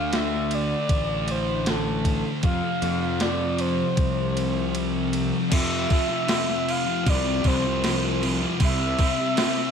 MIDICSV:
0, 0, Header, 1, 5, 480
1, 0, Start_track
1, 0, Tempo, 771208
1, 1515, Time_signature, 4, 2, 24, 8
1, 6044, End_track
2, 0, Start_track
2, 0, Title_t, "Soft synth lead"
2, 0, Program_c, 0, 80
2, 0, Note_on_c, 0, 77, 117
2, 96, Note_on_c, 0, 76, 106
2, 105, Note_off_c, 0, 77, 0
2, 338, Note_on_c, 0, 74, 101
2, 348, Note_off_c, 0, 76, 0
2, 815, Note_on_c, 0, 72, 96
2, 824, Note_off_c, 0, 74, 0
2, 1055, Note_on_c, 0, 69, 91
2, 1065, Note_off_c, 0, 72, 0
2, 1405, Note_off_c, 0, 69, 0
2, 1524, Note_on_c, 0, 77, 112
2, 2001, Note_on_c, 0, 74, 100
2, 2011, Note_off_c, 0, 77, 0
2, 2243, Note_on_c, 0, 72, 87
2, 2253, Note_off_c, 0, 74, 0
2, 3199, Note_off_c, 0, 72, 0
2, 3436, Note_on_c, 0, 76, 121
2, 4175, Note_on_c, 0, 77, 104
2, 4185, Note_off_c, 0, 76, 0
2, 4415, Note_on_c, 0, 74, 105
2, 4424, Note_off_c, 0, 77, 0
2, 4651, Note_on_c, 0, 72, 92
2, 4660, Note_off_c, 0, 74, 0
2, 5121, Note_off_c, 0, 72, 0
2, 5379, Note_on_c, 0, 76, 121
2, 6044, Note_off_c, 0, 76, 0
2, 6044, End_track
3, 0, Start_track
3, 0, Title_t, "Distorted electric guitar"
3, 0, Program_c, 1, 30
3, 0, Note_on_c, 1, 50, 89
3, 0, Note_on_c, 1, 57, 93
3, 0, Note_on_c, 1, 62, 100
3, 1503, Note_off_c, 1, 50, 0
3, 1510, Note_on_c, 1, 41, 84
3, 1512, Note_off_c, 1, 62, 0
3, 1518, Note_on_c, 1, 48, 107
3, 1526, Note_off_c, 1, 57, 0
3, 1529, Note_on_c, 1, 53, 96
3, 3418, Note_off_c, 1, 41, 0
3, 3422, Note_off_c, 1, 48, 0
3, 3427, Note_off_c, 1, 53, 0
3, 3429, Note_on_c, 1, 41, 90
3, 3439, Note_on_c, 1, 48, 107
3, 3447, Note_on_c, 1, 53, 108
3, 3668, Note_off_c, 1, 41, 0
3, 3675, Note_on_c, 1, 41, 66
3, 3677, Note_off_c, 1, 48, 0
3, 3681, Note_off_c, 1, 53, 0
3, 3684, Note_on_c, 1, 48, 73
3, 3688, Note_on_c, 1, 53, 83
3, 3784, Note_off_c, 1, 53, 0
3, 3791, Note_on_c, 1, 53, 78
3, 3801, Note_off_c, 1, 48, 0
3, 3808, Note_on_c, 1, 48, 65
3, 3902, Note_off_c, 1, 41, 0
3, 3906, Note_off_c, 1, 48, 0
3, 3910, Note_on_c, 1, 41, 99
3, 3914, Note_on_c, 1, 48, 101
3, 3915, Note_off_c, 1, 53, 0
3, 3922, Note_on_c, 1, 53, 99
3, 4262, Note_off_c, 1, 53, 0
3, 4270, Note_on_c, 1, 53, 81
3, 4280, Note_off_c, 1, 48, 0
3, 4287, Note_on_c, 1, 48, 66
3, 4392, Note_off_c, 1, 41, 0
3, 4397, Note_off_c, 1, 48, 0
3, 4400, Note_on_c, 1, 41, 75
3, 4401, Note_off_c, 1, 53, 0
3, 4405, Note_on_c, 1, 48, 78
3, 4409, Note_on_c, 1, 53, 95
3, 4503, Note_off_c, 1, 53, 0
3, 4510, Note_on_c, 1, 53, 75
3, 4519, Note_off_c, 1, 48, 0
3, 4526, Note_on_c, 1, 48, 61
3, 4626, Note_off_c, 1, 41, 0
3, 4631, Note_off_c, 1, 48, 0
3, 4633, Note_on_c, 1, 41, 81
3, 4638, Note_on_c, 1, 48, 79
3, 4639, Note_off_c, 1, 53, 0
3, 4646, Note_on_c, 1, 53, 75
3, 4749, Note_off_c, 1, 53, 0
3, 4756, Note_on_c, 1, 53, 74
3, 4763, Note_off_c, 1, 48, 0
3, 4770, Note_on_c, 1, 48, 63
3, 4867, Note_off_c, 1, 41, 0
3, 4874, Note_off_c, 1, 48, 0
3, 4874, Note_on_c, 1, 41, 97
3, 4880, Note_off_c, 1, 53, 0
3, 4882, Note_on_c, 1, 48, 87
3, 4887, Note_on_c, 1, 53, 113
3, 5107, Note_off_c, 1, 41, 0
3, 5115, Note_on_c, 1, 41, 84
3, 5117, Note_off_c, 1, 48, 0
3, 5121, Note_off_c, 1, 53, 0
3, 5125, Note_on_c, 1, 48, 83
3, 5129, Note_on_c, 1, 53, 93
3, 5227, Note_off_c, 1, 53, 0
3, 5235, Note_on_c, 1, 53, 89
3, 5241, Note_off_c, 1, 48, 0
3, 5249, Note_on_c, 1, 48, 67
3, 5338, Note_off_c, 1, 41, 0
3, 5338, Note_off_c, 1, 53, 0
3, 5345, Note_off_c, 1, 48, 0
3, 5358, Note_on_c, 1, 48, 101
3, 5364, Note_on_c, 1, 55, 111
3, 5372, Note_on_c, 1, 60, 102
3, 5590, Note_off_c, 1, 48, 0
3, 5598, Note_off_c, 1, 55, 0
3, 5598, Note_on_c, 1, 48, 69
3, 5606, Note_on_c, 1, 55, 72
3, 5610, Note_off_c, 1, 60, 0
3, 5612, Note_on_c, 1, 60, 77
3, 5714, Note_off_c, 1, 60, 0
3, 5717, Note_on_c, 1, 60, 75
3, 5722, Note_off_c, 1, 55, 0
3, 5729, Note_on_c, 1, 55, 68
3, 5826, Note_off_c, 1, 48, 0
3, 5833, Note_on_c, 1, 48, 99
3, 5836, Note_off_c, 1, 55, 0
3, 5843, Note_on_c, 1, 55, 95
3, 5847, Note_off_c, 1, 60, 0
3, 5850, Note_on_c, 1, 60, 109
3, 6044, Note_off_c, 1, 48, 0
3, 6044, Note_off_c, 1, 55, 0
3, 6044, Note_off_c, 1, 60, 0
3, 6044, End_track
4, 0, Start_track
4, 0, Title_t, "Fingered electric bass"
4, 0, Program_c, 2, 33
4, 0, Note_on_c, 2, 38, 93
4, 457, Note_off_c, 2, 38, 0
4, 556, Note_on_c, 2, 33, 92
4, 1387, Note_off_c, 2, 33, 0
4, 1514, Note_on_c, 2, 41, 97
4, 1618, Note_off_c, 2, 41, 0
4, 1757, Note_on_c, 2, 41, 94
4, 2379, Note_off_c, 2, 41, 0
4, 2476, Note_on_c, 2, 36, 94
4, 3306, Note_off_c, 2, 36, 0
4, 3434, Note_on_c, 2, 41, 106
4, 3642, Note_off_c, 2, 41, 0
4, 4396, Note_on_c, 2, 36, 90
4, 4602, Note_off_c, 2, 36, 0
4, 4634, Note_on_c, 2, 36, 98
4, 5255, Note_off_c, 2, 36, 0
4, 5357, Note_on_c, 2, 36, 111
4, 5561, Note_off_c, 2, 36, 0
4, 6044, End_track
5, 0, Start_track
5, 0, Title_t, "Drums"
5, 78, Note_on_c, 9, 51, 89
5, 83, Note_on_c, 9, 38, 112
5, 141, Note_off_c, 9, 51, 0
5, 146, Note_off_c, 9, 38, 0
5, 317, Note_on_c, 9, 51, 69
5, 379, Note_off_c, 9, 51, 0
5, 555, Note_on_c, 9, 51, 92
5, 556, Note_on_c, 9, 36, 100
5, 618, Note_off_c, 9, 51, 0
5, 619, Note_off_c, 9, 36, 0
5, 795, Note_on_c, 9, 51, 67
5, 857, Note_off_c, 9, 51, 0
5, 1035, Note_on_c, 9, 51, 88
5, 1040, Note_on_c, 9, 38, 104
5, 1097, Note_off_c, 9, 51, 0
5, 1102, Note_off_c, 9, 38, 0
5, 1275, Note_on_c, 9, 36, 72
5, 1276, Note_on_c, 9, 51, 68
5, 1337, Note_off_c, 9, 36, 0
5, 1338, Note_off_c, 9, 51, 0
5, 1511, Note_on_c, 9, 51, 87
5, 1515, Note_on_c, 9, 36, 102
5, 1574, Note_off_c, 9, 51, 0
5, 1577, Note_off_c, 9, 36, 0
5, 1756, Note_on_c, 9, 51, 70
5, 1761, Note_on_c, 9, 38, 31
5, 1818, Note_off_c, 9, 51, 0
5, 1823, Note_off_c, 9, 38, 0
5, 1992, Note_on_c, 9, 51, 95
5, 1997, Note_on_c, 9, 38, 112
5, 2054, Note_off_c, 9, 51, 0
5, 2059, Note_off_c, 9, 38, 0
5, 2231, Note_on_c, 9, 51, 66
5, 2293, Note_off_c, 9, 51, 0
5, 2472, Note_on_c, 9, 51, 95
5, 2474, Note_on_c, 9, 36, 104
5, 2534, Note_off_c, 9, 51, 0
5, 2536, Note_off_c, 9, 36, 0
5, 2718, Note_on_c, 9, 51, 76
5, 2781, Note_off_c, 9, 51, 0
5, 2954, Note_on_c, 9, 51, 92
5, 3016, Note_off_c, 9, 51, 0
5, 3193, Note_on_c, 9, 51, 71
5, 3256, Note_off_c, 9, 51, 0
5, 3433, Note_on_c, 9, 49, 114
5, 3433, Note_on_c, 9, 57, 88
5, 3435, Note_on_c, 9, 36, 116
5, 3496, Note_off_c, 9, 49, 0
5, 3496, Note_off_c, 9, 57, 0
5, 3498, Note_off_c, 9, 36, 0
5, 3673, Note_on_c, 9, 57, 61
5, 3676, Note_on_c, 9, 36, 92
5, 3736, Note_off_c, 9, 57, 0
5, 3739, Note_off_c, 9, 36, 0
5, 3911, Note_on_c, 9, 57, 83
5, 3916, Note_on_c, 9, 38, 111
5, 3973, Note_off_c, 9, 57, 0
5, 3978, Note_off_c, 9, 38, 0
5, 4042, Note_on_c, 9, 38, 38
5, 4105, Note_off_c, 9, 38, 0
5, 4161, Note_on_c, 9, 57, 66
5, 4223, Note_off_c, 9, 57, 0
5, 4397, Note_on_c, 9, 57, 84
5, 4398, Note_on_c, 9, 36, 117
5, 4459, Note_off_c, 9, 57, 0
5, 4461, Note_off_c, 9, 36, 0
5, 4632, Note_on_c, 9, 57, 67
5, 4637, Note_on_c, 9, 36, 92
5, 4694, Note_off_c, 9, 57, 0
5, 4699, Note_off_c, 9, 36, 0
5, 4878, Note_on_c, 9, 57, 84
5, 4883, Note_on_c, 9, 38, 114
5, 4940, Note_off_c, 9, 57, 0
5, 4945, Note_off_c, 9, 38, 0
5, 5121, Note_on_c, 9, 57, 67
5, 5183, Note_off_c, 9, 57, 0
5, 5353, Note_on_c, 9, 57, 88
5, 5356, Note_on_c, 9, 36, 109
5, 5415, Note_off_c, 9, 57, 0
5, 5418, Note_off_c, 9, 36, 0
5, 5593, Note_on_c, 9, 57, 67
5, 5596, Note_on_c, 9, 36, 85
5, 5655, Note_off_c, 9, 57, 0
5, 5658, Note_off_c, 9, 36, 0
5, 5833, Note_on_c, 9, 57, 86
5, 5838, Note_on_c, 9, 38, 117
5, 5895, Note_off_c, 9, 57, 0
5, 5900, Note_off_c, 9, 38, 0
5, 5959, Note_on_c, 9, 38, 35
5, 6021, Note_off_c, 9, 38, 0
5, 6044, End_track
0, 0, End_of_file